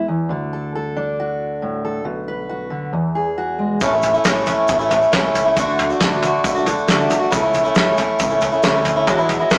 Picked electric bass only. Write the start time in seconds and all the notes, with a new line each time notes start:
0.29 D2
2.05 B1
2.93 E2
3.81 A1
4.25 A1
4.69 A1
5.13 C#2
5.57 D2
6.01 D2
6.44 C#2
6.89 D3
7.33 C#2
7.76 C#2
8.20 C#2
8.64 D2
9.08 E2
9.51 E2